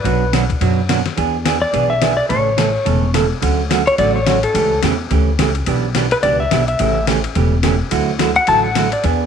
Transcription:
Already playing: electric slide guitar B4
0.04 upright bass B1, hollow-body jazz guitar B2 F#3 B3 D4 F#4 C#5, ride
0.33 hollow-body jazz guitar B2 F#3 B3 D4 F#4 C#5, snare, hi-hat pedal, ride
0.50 kick, ride
0.61 upright bass F#2, hollow-body jazz guitar B2 F#3 B3 D4 F#4 C#5, ride
0.89 hollow-body jazz guitar B2 F#3 B3 D4 F#4 C#5, snare, hi-hat pedal, ride
1.06 snare, ride
1.17 upright bass E2, hollow-body jazz guitar E3 B3 D4 G#4, ride
1.45 hollow-body jazz guitar E3 B3 D4 G#4, snare, hi-hat pedal, ride
1.62 electric slide guitar D5
1.73 upright bass B1, hollow-body jazz guitar E3 B3 D4 G#4, ride
1.90 electric slide guitar E5
2.02 hollow-body jazz guitar E3 B3 D4 G#4, snare, hi-hat pedal, ride
2.17 electric slide guitar D5
2.29 upright bass A1, hollow-body jazz guitar C#3 E3 A3 C#4 A4, electric slide guitar C#5, ride
2.57 hollow-body jazz guitar C#3 E3 A3 C#4 A4, snare, hi-hat pedal, ride
2.85 upright bass E1, hollow-body jazz guitar C#3 E3 A3 C#4 A4, ride
3.14 hollow-body jazz guitar C#3 E3 A3 C#4 A4, snare, hi-hat pedal, ride
3.42 upright bass D2, hollow-body jazz guitar D3 F#3 A3 C#4 F#4, ride
3.70 hollow-body jazz guitar D3 F#3 A3 C#4 F#4, snare, hi-hat pedal, ride
3.87 electric slide guitar C#5, ride
3.98 upright bass A1, hollow-body jazz guitar D3 F#3 A3 C#4 F#4, electric slide guitar D5, ride
4.16 electric slide guitar C#5
4.26 hollow-body jazz guitar D3 F#3 A3 C#4 F#4, snare, hi-hat pedal, ride
4.43 electric slide guitar A4, ride
4.54 upright bass C#2, hollow-body jazz guitar C#3 E3 A3 C#4 G4, ride
4.83 upright bass E2, hollow-body jazz guitar C#3 E3 A3 C#4 G4, snare, hi-hat pedal, ride
5.11 upright bass D2, hollow-body jazz guitar C#3 E3 A3 C#4 G4, ride
5.39 upright bass C#2, hollow-body jazz guitar C#3 E3 A3 C#4 G4, snare, hi-hat pedal, ride
5.55 ride
5.66 upright bass B1, hollow-body jazz guitar B2 E3 B3 D4 G4, ride
5.95 hollow-body jazz guitar B2 E3 B3 D4 G4, snare, hi-hat pedal, ride
6.11 electric slide guitar B4, ride
6.23 upright bass C#2, hollow-body jazz guitar B2 E3 B3 D4 G4, electric slide guitar D5, ride
6.40 electric slide guitar E5
6.51 upright bass B1, hollow-body jazz guitar B2 E3 B3 D4 G4, snare, hi-hat pedal, ride
6.68 electric slide guitar E5, ride
6.79 upright bass A1, hollow-body jazz guitar C#3 E3 A3 C#4 G4, ride
7.07 hollow-body jazz guitar C#3 E3 A3 C#4 G4, snare, hi-hat pedal, ride
7.24 ride
7.35 upright bass E1, hollow-body jazz guitar C#3 E3 A3 C#4 G4, ride
7.63 hollow-body jazz guitar C#3 E3 A3 C#4 G4, snare, hi-hat pedal, ride
7.91 upright bass D2, hollow-body jazz guitar D3 F#3 A3 E4 F#4, ride
8.19 hollow-body jazz guitar D3 F#3 A3 E4 F#4, snare, hi-hat pedal, ride
8.36 electric slide guitar F#5, ride
8.47 upright bass A1, hollow-body jazz guitar D3 F#3 A3 E4 F#4, electric slide guitar A5, ride
8.64 electric slide guitar F#5
8.75 hollow-body jazz guitar D3 F#3 A3 E4 F#4, snare, hi-hat pedal, ride
8.92 electric slide guitar D5, ride
9.04 upright bass E2, hollow-body jazz guitar E3 B3 D4 G#4, ride

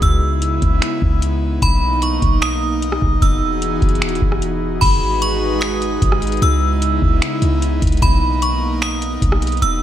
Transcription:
Already playing: analog synth pad G#3 D#4
0.02 808-style bass C#2, analog synth pad C#3 B3 E4, synth bell E6, kick, closed hi-hat
0.42 closed hi-hat
0.62 808-style bass C#2, kick, closed hi-hat
0.82 finger snap, closed hi-hat
1.02 808-style bass C#2, kick
1.22 closed hi-hat
1.62 808-style bass B1, analog synth pad A#3 D#4, synth bell B5, kick, closed hi-hat
2.02 synth bell C#6, closed hi-hat
2.22 808-style bass B1, kick, closed hi-hat
2.42 synth bell D#6, finger snap, closed hi-hat
2.82 closed hi-hat
2.92 cross-stick
3.02 808-style bass B1, kick
3.22 808-style bass E1, analog synth pad E3 B3 F#4 G#4, synth bell E6, kick, closed hi-hat
3.62 closed hi-hat
3.82 808-style bass E1, kick, closed hi-hat
3.89 closed hi-hat
3.95 closed hi-hat
4.02 finger snap, closed hi-hat
4.09 closed hi-hat
4.15 closed hi-hat
4.22 808-style bass E1, kick
4.32 cross-stick
4.42 closed hi-hat
4.81 808-style bass G#1, analog synth pad G#3 D#4 F#4 G#4 B4, synth bell B5, kick, closed hi-hat, crash
5.22 synth bell C#6, closed hi-hat
5.61 synth bell D#6, finger snap, closed hi-hat
5.82 closed hi-hat
6.02 808-style bass G#1, kick, closed hi-hat
6.12 cross-stick
6.22 closed hi-hat
6.27 closed hi-hat
6.32 closed hi-hat
6.37 closed hi-hat
6.42 808-style bass C#2, analog synth pad C#3 B3 E4, synth bell E6, closed hi-hat
6.82 closed hi-hat
7.02 808-style bass C#2, kick
7.22 finger snap, closed hi-hat
7.42 808-style bass C#2, closed hi-hat
7.62 closed hi-hat
7.82 808-style bass C#2, kick, closed hi-hat
7.87 closed hi-hat
7.92 closed hi-hat
7.97 closed hi-hat
8.02 808-style bass B1, analog synth pad A#3, synth bell B5, kick, closed hi-hat
8.42 synth bell C#6, closed hi-hat
8.82 synth bell D#6, finger snap, closed hi-hat
9.02 closed hi-hat
9.22 808-style bass B1, kick, closed hi-hat
9.32 cross-stick
9.42 closed hi-hat
9.47 closed hi-hat
9.52 closed hi-hat
9.57 closed hi-hat
9.62 808-style bass E1, analog synth pad E3 F#4 G#4, synth bell E6, closed hi-hat

